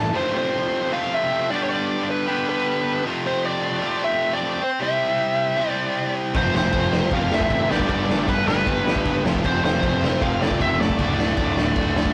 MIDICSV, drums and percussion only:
0, 0, Header, 1, 2, 480
1, 0, Start_track
1, 0, Tempo, 387597
1, 178, Time_signature, 4, 2, 24, 8
1, 15027, End_track
2, 0, Start_track
2, 0, Title_t, "Drums"
2, 7858, Note_on_c, 9, 49, 66
2, 7860, Note_on_c, 9, 36, 122
2, 7982, Note_off_c, 9, 49, 0
2, 7984, Note_off_c, 9, 36, 0
2, 8110, Note_on_c, 9, 38, 122
2, 8234, Note_off_c, 9, 38, 0
2, 8327, Note_on_c, 9, 49, 70
2, 8334, Note_on_c, 9, 36, 118
2, 8451, Note_off_c, 9, 49, 0
2, 8458, Note_off_c, 9, 36, 0
2, 8579, Note_on_c, 9, 38, 125
2, 8703, Note_off_c, 9, 38, 0
2, 8804, Note_on_c, 9, 49, 56
2, 8811, Note_on_c, 9, 36, 102
2, 8928, Note_off_c, 9, 49, 0
2, 8935, Note_off_c, 9, 36, 0
2, 9062, Note_on_c, 9, 38, 126
2, 9173, Note_on_c, 9, 36, 97
2, 9186, Note_off_c, 9, 38, 0
2, 9288, Note_on_c, 9, 49, 70
2, 9291, Note_off_c, 9, 36, 0
2, 9291, Note_on_c, 9, 36, 102
2, 9412, Note_off_c, 9, 49, 0
2, 9415, Note_off_c, 9, 36, 0
2, 9544, Note_on_c, 9, 38, 102
2, 9652, Note_on_c, 9, 36, 96
2, 9668, Note_off_c, 9, 38, 0
2, 9773, Note_off_c, 9, 36, 0
2, 9773, Note_on_c, 9, 36, 105
2, 9778, Note_on_c, 9, 49, 66
2, 9897, Note_off_c, 9, 36, 0
2, 9902, Note_off_c, 9, 49, 0
2, 10027, Note_on_c, 9, 38, 118
2, 10151, Note_off_c, 9, 38, 0
2, 10254, Note_on_c, 9, 36, 118
2, 10257, Note_on_c, 9, 49, 75
2, 10378, Note_off_c, 9, 36, 0
2, 10381, Note_off_c, 9, 49, 0
2, 10507, Note_on_c, 9, 38, 127
2, 10631, Note_off_c, 9, 38, 0
2, 10733, Note_on_c, 9, 36, 109
2, 10735, Note_on_c, 9, 49, 71
2, 10857, Note_off_c, 9, 36, 0
2, 10859, Note_off_c, 9, 49, 0
2, 10990, Note_on_c, 9, 38, 127
2, 11093, Note_on_c, 9, 36, 101
2, 11113, Note_off_c, 9, 38, 0
2, 11212, Note_off_c, 9, 36, 0
2, 11212, Note_on_c, 9, 36, 97
2, 11212, Note_on_c, 9, 49, 73
2, 11336, Note_off_c, 9, 36, 0
2, 11336, Note_off_c, 9, 49, 0
2, 11464, Note_on_c, 9, 38, 110
2, 11576, Note_on_c, 9, 36, 98
2, 11588, Note_off_c, 9, 38, 0
2, 11695, Note_off_c, 9, 36, 0
2, 11695, Note_on_c, 9, 36, 105
2, 11699, Note_on_c, 9, 49, 74
2, 11818, Note_off_c, 9, 36, 0
2, 11823, Note_off_c, 9, 49, 0
2, 11945, Note_on_c, 9, 38, 118
2, 12068, Note_off_c, 9, 38, 0
2, 12173, Note_on_c, 9, 36, 117
2, 12174, Note_on_c, 9, 49, 71
2, 12297, Note_off_c, 9, 36, 0
2, 12298, Note_off_c, 9, 49, 0
2, 12434, Note_on_c, 9, 38, 127
2, 12558, Note_off_c, 9, 38, 0
2, 12652, Note_on_c, 9, 36, 118
2, 12658, Note_on_c, 9, 49, 61
2, 12776, Note_off_c, 9, 36, 0
2, 12782, Note_off_c, 9, 49, 0
2, 12907, Note_on_c, 9, 38, 126
2, 13012, Note_on_c, 9, 36, 96
2, 13030, Note_off_c, 9, 38, 0
2, 13131, Note_off_c, 9, 36, 0
2, 13131, Note_on_c, 9, 36, 99
2, 13137, Note_on_c, 9, 49, 67
2, 13255, Note_off_c, 9, 36, 0
2, 13260, Note_off_c, 9, 49, 0
2, 13386, Note_on_c, 9, 38, 108
2, 13490, Note_on_c, 9, 36, 100
2, 13510, Note_off_c, 9, 38, 0
2, 13606, Note_on_c, 9, 49, 68
2, 13607, Note_off_c, 9, 36, 0
2, 13607, Note_on_c, 9, 36, 106
2, 13730, Note_off_c, 9, 49, 0
2, 13731, Note_off_c, 9, 36, 0
2, 13855, Note_on_c, 9, 38, 118
2, 13978, Note_off_c, 9, 38, 0
2, 14078, Note_on_c, 9, 49, 70
2, 14083, Note_on_c, 9, 36, 111
2, 14202, Note_off_c, 9, 49, 0
2, 14207, Note_off_c, 9, 36, 0
2, 14336, Note_on_c, 9, 38, 127
2, 14460, Note_off_c, 9, 38, 0
2, 14560, Note_on_c, 9, 49, 67
2, 14565, Note_on_c, 9, 36, 105
2, 14684, Note_off_c, 9, 49, 0
2, 14689, Note_off_c, 9, 36, 0
2, 14816, Note_on_c, 9, 38, 127
2, 14924, Note_on_c, 9, 36, 98
2, 14940, Note_off_c, 9, 38, 0
2, 15027, Note_off_c, 9, 36, 0
2, 15027, End_track
0, 0, End_of_file